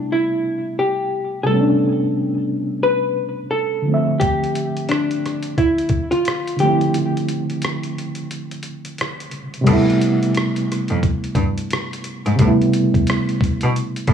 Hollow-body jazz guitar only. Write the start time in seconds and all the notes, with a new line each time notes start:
Already playing: D4
0.12 E4
0.79 G4
1.43 G#4 A4
2.83 B4
3.51 A4
4.20 G4
4.89 D4
5.58 E4
6.11 F4
6.60 G4